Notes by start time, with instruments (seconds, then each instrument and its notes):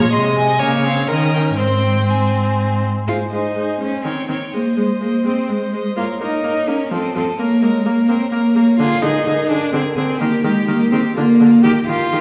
Already playing: violin C#5
0.00 cello A#2, viola F3
0.11 cello C3, viola G#3, violin D#5 C6
0.36 violin G#5
0.59 cello C#3, viola A#3, violin C#5 G#5
0.85 viola C4, violin F5
1.08 cello D#3, viola C#4, violin A#4 D#5
1.34 violin G5
1.57 cello G#2, viola C4, violin C5 G5
2.08 viola C4, violin G#5
3.07 viola G#3, cello F4, violin C5 G#5
3.31 viola G#3, cello D#4, violin C5 G#5
3.56 viola G#3, violin C5 G#5
3.80 viola G#3, cello C#4, violin C5 G#5
4.04 viola D#3, cello C4, violin C#5 G5
4.28 viola D#3, cello C4, violin C#5 G5
4.53 viola G#3, cello A#3, violin C5 D#5
4.77 cello G#3, viola G#3, violin C5 D#5
5.00 viola G#3, cello A#3, violin C5 D#5
5.24 viola G#3, cello C4, violin C5 D#5
5.49 viola G#3, cello G#3, violin C5 D#5
5.74 viola G#3, violin C5 D#5
5.97 viola A#3, cello F4, violin A#4 C#5
6.21 viola A#3, cello D#4, violin A#4 C#5
6.44 viola A#3, violin A#4 C#5
6.67 viola A#3, cello C#4, violin A#4
6.72 violin C#5
6.91 viola F3, cello C4, violin A4 D#5
7.15 viola F3, cello C4, violin A4 D#5
7.39 cello A#3, viola A#3, violin A#4 C#5
7.62 cello G#3, viola A#3, violin A#4 C#5
7.85 cello A#3, viola A#3, violin A#4 C#5
8.09 viola A#3, cello C4, violin A#4 C#5
8.32 viola A#3, cello A#3, violin A#4 C#5
8.56 viola A#3, violin A#4 C#5
8.79 viola D3, cello F4, violin G#4 A#4
9.02 viola D3, cello D#4, violin G#4 A#4
9.26 viola D3, violin G#4 A#4
9.49 viola D3, cello D4, violin G#4 A#4
9.73 viola D3, cello C4, violin G#4 A#4
9.97 viola D3, cello C4, violin G#4 A#4
10.19 viola D#3, cello A#3, violin G4 A#4
10.44 viola D#3, cello G#3, violin G4 A#4
10.67 viola D#3, cello A#3, violin G4 A#4
10.91 viola D#3, cello C4, violin G4 A#4
11.15 viola D3, cello A#3, violin F4 A#4
11.40 viola D3, violin F4 A#4
11.63 viola D#3, cello G4, violin G4 A#4
11.87 viola D#3, cello F4, violin G4 A#4
12.12 viola D#3, violin G4 A#4